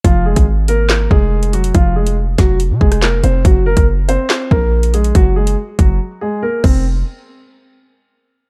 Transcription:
<<
  \new Staff \with { instrumentName = "Grand piano" } { \time 4/4 \key f \phrygian \tempo 4 = 141 <f f'>8 <aes aes'>8 r8 <bes bes'>4 <aes aes'>4 <ges ges'>8 | <f f'>8 <aes aes'>8 r8 <ges ges'>8 r8 <aes aes'>8 <bes bes'>8 <c' c''>8 | <ges ges'>8 <bes bes'>8 r8 <c' c''>4 <bes bes'>4 <aes aes'>8 | <ges ges'>8 <aes aes'>8 r8 <ges ges'>8 r8 <aes aes'>8 <bes bes'>8 c'8 |
r1 | }
  \new Staff \with { instrumentName = "808-style bass" } { \clef bass \time 4/4 \key f \phrygian f,,8. aes,,4.~ aes,,16 f,,4. | f,,4. f,,8. c16 f,,4 f,,8 | ges,,8. ges,,4 r8. bes,,4. | ges,,4 r8 ges,,8 r4. f,,8~ |
f,,8 r2. r8 | }
  \new DrumStaff \with { instrumentName = "Drums" } \drummode { \time 4/4 <hh bd>8. <hh bd>16 r8 hh8 <hc sn>8 bd8 r16 hh16 hh16 hh16 | <hh bd>8. hh16 r8 <hh bd sn>8 hh8 bd16 <hh ss>16 <hc sn>8 hh8 | <hh bd>8. <hh bd>16 r8 hh8 <hc sn>8 bd8 r16 hh16 hh16 hh16 | <hh bd>8. hh16 r8 <hh bd>8 r4 r8 <cymc bd>8 |
r4 r4 r4 r4 | }
>>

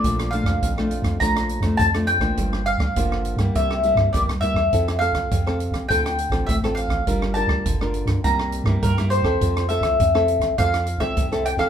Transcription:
<<
  \new Staff \with { instrumentName = "Mandolin" } { \time 4/4 \key f \major \tempo 4 = 102 d''8 f''4. bes''4 a''8 g''8~ | g''8 f''4. e''4 d''8 e''8~ | e''8 f''4. g''4 e''8 f''8~ | f''8 a''4. bes''4 bes'8 c''8~ |
c''8 e''4. f''8. e''8. g''16 f''16 | }
  \new Staff \with { instrumentName = "Nylon-string guitar" } { \time 4/4 \key f \major << { <f a d'>8 <f a d'>8. <f a d'>8. <f a d'>8. <f a d'>8 <f a d'>8 <f bes d'>16~ | <f bes d'>8 r8 <f bes d'>8. <g bes e'>8. <g bes e'>8 <g bes e'>16 r16 <g bes e'>16 r16 | <c' e' a'>8 <c' a'>8. <c' a'>8. <c' f' a'>8 r16 <c' f' a'>8 <c' f' a'>8. | <d' f' bes'>8 <d' f' bes'>8. <d' f' bes'>8. <g bes e'>8. <g bes e'>8 <g bes e'>8 <c' e' a'>16~ |
<c' e' a'>8 <c' e' a'>8 r16 <c' e' a'>8. <c' e' a'>8 r16 <c' e' a'>8 <c' e' a'>8 <c' e' a'>16 | } \\ { bes,4 f,4 bes,4 f,4 | g,4 d4 c4 g,4 | f4 c4 d4 a,4 | g4 d4 c4 g,4 |
f4 c4 f4 c4 | } >> }
  \new Staff \with { instrumentName = "Sub bass" } { \clef bass \time 4/4 \key f \major bes,,8. f,16 bes,,8. f,16 bes,,8. f,16 f,8. a,,16 | g,,8. d,16 g,,8. g,16 c,8. g,16 bes,,16 c,16 d,16 e,16 | f,8. c,16 f,8. c,16 d,8. a,,16 a,,8. a,,16 | g,,8. d,16 g,,8. g,16 c,8. g,16 g,8. e,16 |
f,8. c,16 f,8. c,16 f,8. c,16 c,8. c,16 | }
  \new DrumStaff \with { instrumentName = "Drums" } \drummode { \time 4/4 <hh bd>16 <hh ss>16 hh16 <hh bd ss>16 <hh bd>16 ss16 hh16 <hh bd ss>16 <hh bd>16 <hh ss>16 hh16 <hh bd ss>16 <hh bd>16 <hh ss>16 hh16 <hh bd ss>16 | <hh bd>16 ss16 hh16 <bd ss>16 <hh bd>16 ss16 hh16 <hh bd ss>16 <hh bd>16 ss16 hh16 <bd ss>16 <hh bd>16 <hh ss>16 hh16 <bd ss>16 | <hh bd>16 <hh ss>16 hh16 <hh bd ss>16 <hh bd>16 ss16 hh16 <hh bd ss>16 <hh bd>16 <hh ss>16 hh16 <hh bd ss>16 <hh bd>16 <hh ss>16 hh16 <hh bd ss>16 | <hh bd>16 ss16 hh16 <bd ss>16 <hh bd>16 ss16 hh16 <hh bd ss>16 <hh bd>16 ss16 hh16 <bd ss>16 <hh bd>16 <hh ss>16 hh16 <bd ss>16 |
<hh bd>16 <hh ss>16 hh16 <hh bd ss>16 <hh bd>16 ss16 hh16 <hh bd ss>16 <hh bd>16 <hh ss>16 hh16 <hh bd ss>16 <hh bd>16 <hh ss>16 hh16 <hh bd ss>16 | }
>>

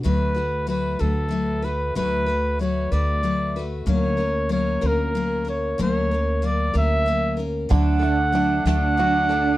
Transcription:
<<
  \new Staff \with { instrumentName = "Flugelhorn" } { \time 6/8 \key b \minor \tempo 4. = 63 b'4 b'8 a'4 b'8 | b'4 cis''8 d''4 r8 | cis''4 cis''8 ais'4 cis''8 | cis''4 d''8 e''4 r8 |
fis''4. fis''4. | }
  \new Staff \with { instrumentName = "Cello" } { \time 6/8 \key b \minor r2. | r2. | r2. | r2. |
d'4 d'2 | }
  \new Staff \with { instrumentName = "Five-string banjo" } { \time 6/8 \key b \minor r2. | r2. | r2. | r2. |
d8 a8 d'8 a8 fis'8 d'8 | }
  \new Staff \with { instrumentName = "Steel-string acoustic guitar" } { \time 6/8 \key b \minor <d fis a fis' b'>8 <a fis' b'>8 <fis a fis' b'>8 <d fis a fis' b'>8 <fis a fis' b'>8 <a fis' b'>8 | <d fis a fis' b'>8 <a fis' b'>8 <fis a fis' b'>8 <d fis a fis' b'>8 <fis a fis' b'>8 <a fis' b'>8 | <d fis ais cis' ais'>8 <ais cis' ais'>8 <fis ais cis' ais'>8 <d fis ais cis' ais'>8 <fis ais cis' ais'>8 <ais cis' ais'>8 | <d fis ais cis' ais'>8 <ais cis' ais'>8 <fis ais ais'>8 <d fis ais cis' ais'>8 <fis ais cis' ais'>8 <ais cis' ais'>8 |
<d fis a d' a'>8 <a d' a'>8 <fis a d' a'>8 <d fis a d' a'>8 <fis a d' a'>8 <a d' a'>8 | }
  \new Staff \with { instrumentName = "Upright bass" } { \clef bass \time 6/8 \key b \minor d,4. d,4. | d,4. d,4. | d,4. d,4. | d,4. d,4. |
d,4. d,4. | }
  \new DrumStaff \with { instrumentName = "Drums" } \drummode { \time 6/8 r4. r4. | r4. r4. | r4. r4. | r4. r4. |
<hh bd>8 hh8 hh8 <hh sn>8 hh8 hh8 | }
>>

